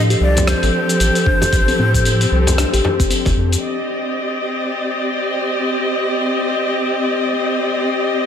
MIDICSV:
0, 0, Header, 1, 7, 480
1, 0, Start_track
1, 0, Tempo, 526316
1, 1393, Time_signature, 4, 2, 24, 8
1, 7534, End_track
2, 0, Start_track
2, 0, Title_t, "Ney"
2, 0, Program_c, 0, 77
2, 197, Note_on_c, 0, 74, 93
2, 440, Note_on_c, 0, 72, 95
2, 454, Note_off_c, 0, 74, 0
2, 2836, Note_off_c, 0, 72, 0
2, 7534, End_track
3, 0, Start_track
3, 0, Title_t, "String section"
3, 0, Program_c, 1, 48
3, 0, Note_on_c, 1, 53, 82
3, 0, Note_on_c, 1, 60, 76
3, 0, Note_on_c, 1, 67, 75
3, 0, Note_on_c, 1, 69, 89
3, 3274, Note_off_c, 1, 53, 0
3, 3274, Note_off_c, 1, 60, 0
3, 3274, Note_off_c, 1, 67, 0
3, 3274, Note_off_c, 1, 69, 0
3, 3307, Note_on_c, 1, 74, 65
3, 3307, Note_on_c, 1, 75, 76
3, 3308, Note_on_c, 1, 60, 72
3, 3308, Note_on_c, 1, 67, 64
3, 7534, Note_off_c, 1, 60, 0
3, 7534, Note_off_c, 1, 67, 0
3, 7534, Note_off_c, 1, 74, 0
3, 7534, Note_off_c, 1, 75, 0
3, 7534, End_track
4, 0, Start_track
4, 0, Title_t, "Steel tongue drum"
4, 0, Program_c, 2, 114
4, 90, Note_on_c, 2, 67, 78
4, 318, Note_off_c, 2, 67, 0
4, 333, Note_on_c, 2, 60, 73
4, 422, Note_off_c, 2, 60, 0
4, 432, Note_on_c, 2, 60, 70
4, 567, Note_off_c, 2, 60, 0
4, 1151, Note_on_c, 2, 62, 73
4, 1279, Note_off_c, 2, 62, 0
4, 1291, Note_on_c, 2, 67, 77
4, 1518, Note_off_c, 2, 67, 0
4, 1528, Note_on_c, 2, 60, 73
4, 1620, Note_off_c, 2, 60, 0
4, 1631, Note_on_c, 2, 60, 74
4, 1766, Note_off_c, 2, 60, 0
4, 2349, Note_on_c, 2, 62, 71
4, 2478, Note_off_c, 2, 62, 0
4, 2490, Note_on_c, 2, 67, 75
4, 2718, Note_off_c, 2, 67, 0
4, 2727, Note_on_c, 2, 60, 77
4, 2814, Note_off_c, 2, 60, 0
4, 2825, Note_on_c, 2, 60, 82
4, 2963, Note_off_c, 2, 60, 0
4, 7534, End_track
5, 0, Start_track
5, 0, Title_t, "Analog synth bass"
5, 0, Program_c, 3, 38
5, 0, Note_on_c, 3, 45, 85
5, 141, Note_off_c, 3, 45, 0
5, 188, Note_on_c, 3, 36, 84
5, 498, Note_off_c, 3, 36, 0
5, 572, Note_on_c, 3, 33, 96
5, 639, Note_off_c, 3, 33, 0
5, 913, Note_on_c, 3, 33, 83
5, 1008, Note_off_c, 3, 33, 0
5, 1393, Note_on_c, 3, 33, 101
5, 1568, Note_off_c, 3, 33, 0
5, 1633, Note_on_c, 3, 45, 83
5, 2061, Note_off_c, 3, 45, 0
5, 2112, Note_on_c, 3, 36, 81
5, 2420, Note_off_c, 3, 36, 0
5, 2493, Note_on_c, 3, 33, 83
5, 2560, Note_off_c, 3, 33, 0
5, 2733, Note_on_c, 3, 31, 81
5, 2800, Note_off_c, 3, 31, 0
5, 2973, Note_on_c, 3, 29, 97
5, 3040, Note_off_c, 3, 29, 0
5, 3072, Note_on_c, 3, 41, 98
5, 3248, Note_off_c, 3, 41, 0
5, 7534, End_track
6, 0, Start_track
6, 0, Title_t, "Frame drum"
6, 341, Note_on_c, 9, 64, 90
6, 432, Note_off_c, 9, 64, 0
6, 1291, Note_on_c, 9, 64, 88
6, 1383, Note_off_c, 9, 64, 0
6, 2252, Note_on_c, 9, 64, 78
6, 2343, Note_off_c, 9, 64, 0
6, 2595, Note_on_c, 9, 64, 84
6, 2686, Note_off_c, 9, 64, 0
6, 2968, Note_on_c, 9, 64, 85
6, 3059, Note_off_c, 9, 64, 0
6, 7534, End_track
7, 0, Start_track
7, 0, Title_t, "Drums"
7, 94, Note_on_c, 9, 46, 45
7, 98, Note_on_c, 9, 82, 31
7, 185, Note_off_c, 9, 46, 0
7, 189, Note_off_c, 9, 82, 0
7, 335, Note_on_c, 9, 46, 28
7, 339, Note_on_c, 9, 82, 58
7, 426, Note_off_c, 9, 46, 0
7, 430, Note_off_c, 9, 82, 0
7, 433, Note_on_c, 9, 37, 74
7, 433, Note_on_c, 9, 46, 64
7, 437, Note_on_c, 9, 82, 52
7, 524, Note_off_c, 9, 37, 0
7, 524, Note_off_c, 9, 46, 0
7, 528, Note_off_c, 9, 82, 0
7, 574, Note_on_c, 9, 46, 42
7, 578, Note_on_c, 9, 82, 30
7, 665, Note_off_c, 9, 46, 0
7, 669, Note_off_c, 9, 82, 0
7, 815, Note_on_c, 9, 46, 32
7, 819, Note_on_c, 9, 82, 63
7, 906, Note_off_c, 9, 46, 0
7, 910, Note_off_c, 9, 82, 0
7, 913, Note_on_c, 9, 46, 64
7, 917, Note_on_c, 9, 82, 52
7, 1005, Note_off_c, 9, 46, 0
7, 1009, Note_off_c, 9, 82, 0
7, 1052, Note_on_c, 9, 46, 45
7, 1056, Note_on_c, 9, 82, 34
7, 1144, Note_off_c, 9, 46, 0
7, 1148, Note_off_c, 9, 82, 0
7, 1153, Note_on_c, 9, 36, 103
7, 1244, Note_off_c, 9, 36, 0
7, 1294, Note_on_c, 9, 46, 30
7, 1298, Note_on_c, 9, 82, 60
7, 1385, Note_off_c, 9, 46, 0
7, 1389, Note_off_c, 9, 82, 0
7, 1392, Note_on_c, 9, 46, 72
7, 1393, Note_on_c, 9, 36, 99
7, 1396, Note_on_c, 9, 82, 53
7, 1483, Note_off_c, 9, 46, 0
7, 1484, Note_off_c, 9, 36, 0
7, 1487, Note_off_c, 9, 82, 0
7, 1534, Note_on_c, 9, 46, 45
7, 1538, Note_on_c, 9, 82, 31
7, 1625, Note_off_c, 9, 46, 0
7, 1629, Note_off_c, 9, 82, 0
7, 1773, Note_on_c, 9, 46, 32
7, 1774, Note_on_c, 9, 36, 60
7, 1777, Note_on_c, 9, 82, 64
7, 1865, Note_off_c, 9, 46, 0
7, 1866, Note_off_c, 9, 36, 0
7, 1869, Note_off_c, 9, 82, 0
7, 1874, Note_on_c, 9, 46, 65
7, 1878, Note_on_c, 9, 82, 50
7, 1965, Note_off_c, 9, 46, 0
7, 1969, Note_off_c, 9, 82, 0
7, 2015, Note_on_c, 9, 46, 48
7, 2019, Note_on_c, 9, 82, 33
7, 2106, Note_off_c, 9, 46, 0
7, 2110, Note_off_c, 9, 82, 0
7, 2255, Note_on_c, 9, 46, 30
7, 2259, Note_on_c, 9, 82, 61
7, 2346, Note_off_c, 9, 46, 0
7, 2350, Note_off_c, 9, 82, 0
7, 2355, Note_on_c, 9, 37, 73
7, 2355, Note_on_c, 9, 46, 67
7, 2359, Note_on_c, 9, 82, 53
7, 2446, Note_off_c, 9, 37, 0
7, 2446, Note_off_c, 9, 46, 0
7, 2450, Note_off_c, 9, 82, 0
7, 2495, Note_on_c, 9, 46, 48
7, 2499, Note_on_c, 9, 82, 33
7, 2586, Note_off_c, 9, 46, 0
7, 2590, Note_off_c, 9, 82, 0
7, 2734, Note_on_c, 9, 36, 99
7, 2734, Note_on_c, 9, 46, 32
7, 2738, Note_on_c, 9, 82, 62
7, 2825, Note_off_c, 9, 36, 0
7, 2825, Note_off_c, 9, 46, 0
7, 2829, Note_off_c, 9, 82, 0
7, 2832, Note_on_c, 9, 46, 66
7, 2836, Note_on_c, 9, 82, 51
7, 2923, Note_off_c, 9, 46, 0
7, 2927, Note_off_c, 9, 82, 0
7, 2974, Note_on_c, 9, 36, 101
7, 2974, Note_on_c, 9, 46, 45
7, 2978, Note_on_c, 9, 82, 33
7, 3065, Note_off_c, 9, 36, 0
7, 3065, Note_off_c, 9, 46, 0
7, 3069, Note_off_c, 9, 82, 0
7, 3215, Note_on_c, 9, 46, 31
7, 3219, Note_on_c, 9, 82, 63
7, 3306, Note_off_c, 9, 46, 0
7, 3310, Note_off_c, 9, 82, 0
7, 7534, End_track
0, 0, End_of_file